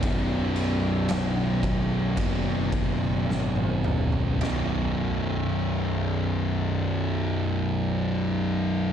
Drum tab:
RD |x-x-x-x-x-x-----|b---------------|
SD |----o-------o---|o---------------|
T1 |-------------o--|----------------|
T2 |--------------o-|----------------|
FT |---------------o|o---------------|
BD |o-----o-o-o-----|----------------|